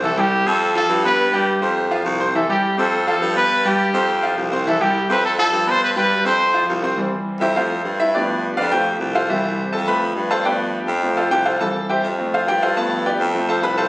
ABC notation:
X:1
M:4/4
L:1/8
Q:1/4=207
K:Flyd
V:1 name="Grand piano"
[E,Ee] [G,Gg]2 [Ccc']2 [F,Ff]2 [B,Bb]- | [B,Bb] [G,Gg]2 [Ccc']2 [F,Ff]2 [Ccc'] | [E,Ee] [G,Gg]2 [Ccc']2 [F,Ff]2 [B,Bb]- | [B,Bb] [G,Gg]2 [Ccc']2 [F,Ff]2 [Ccc'] |
[E,Ee] [G,Gg]2 [Ccc']2 [F,Ff]2 [B,Bb]- | [B,Bb] [G,Gg]2 [Ccc']2 [F,Ff]2 [Ccc'] | z3 [EGce] [FAcf]3 [Ee] | [DGBd]3 [FBdf] [Gg]3 [FAcf] |
[EGce]3 [Aa] [Bb]3 [Acfa] | [GBdg]3 z2 [FAcf] [Gg] [FAcf] | [Aa]2 [Gceg] z2 [FAcf] [Gg] [FAcf] | [Aa]2 [GBdg] z2 [Acfa] [Bb] [Acfa] |]
V:2 name="Grand piano"
z8 | z8 | z8 | z8 |
z8 | z8 | [E,G,C]4 [F,A,C] z3 | [F,A,B,]3 z [F,A,C]3 z |
[E,G,C]4 [F,A,C]4 | [F,A,B,]3 z [F,A,C]3 z | [E,G,C]3 z [F,A,C]3 z | [F,A,B,]4 [F,A,C]4 |]
V:3 name="Trumpet"
A G2 A2 A2 B- | B G4 z3 | A G2 A2 A2 B- | B G6 z |
A G2 B A A2 c | B B2 c3 z2 | z8 | z8 |
z8 | z8 | z8 | z8 |]
V:4 name="Baritone saxophone" clef=bass
C,,3 F,,3 G,,2- | G,,3 F,,3 C,,2- | C,, z2 F,,3 G,,2- | G,,3 F,,3 C,,2- |
C,,3 F,,3 G,,2- | G,,3 F,,3 C,,2- | C,, z2 F,,3 G,,2- | G,,3 F,,3 C,,2- |
C,,3 F,,3 G,,2- | G,,3 F,,3 C,,2- | C,, z2 F,,3 G,,2- | G,,3 F,,3 C,,2 |]